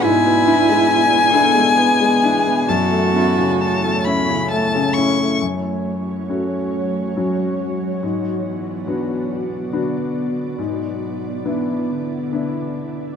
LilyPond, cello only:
\new Staff \with { instrumentName = "Cello" } { \clef bass \time 3/4 \key fis \minor \tempo 4 = 68 e'4. a'8 gis'4 | fis'2 r4 | a4 a4 gis4 | fis8 e4. d4 |
fis4 e8 d4. | }